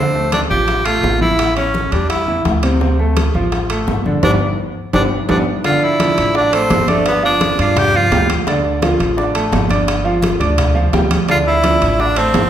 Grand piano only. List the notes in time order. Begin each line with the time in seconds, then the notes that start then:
Already playing: D3 D4
0.15 A3 A4
0.51 F3 F4
0.85 A3 A4
1.21 E3 E4
1.57 C#4 C#5
1.92 G3 G4
2.28 E3 E4
2.63 C3 C4
2.81 C3 C4
2.99 A3 A4
3.35 F3 F4
3.70 A3 A4
4.06 D3 D4
4.23 G3 B3 D4
4.94 G3 B3 D4
5.29 G3 B3 D4
5.64 D3 D4 D5
5.99 F3 D4 D5
6.35 D4 D5 D6
6.52 A3 A4 A5
6.88 D4 D5 D6
7.23 F3 F4 F5
7.60 D4 D5 D6
7.94 F3 F4 F5
8.12 G3 G4 G5
8.48 D3 D4 D5
8.82 F3 F4 F5
9.17 D4 D5 D6
9.35 A3 A4 A5
9.70 D4 D5 D6
10.05 F3 F4 F5
10.40 D4 D5 D6
10.75 F3 F4 F5
10.93 G3 G4 G5
11.29 D3 D4 D5
11.64 F3 D4 D5
11.99 D4 D5 D6
12.17 A3 A4 A5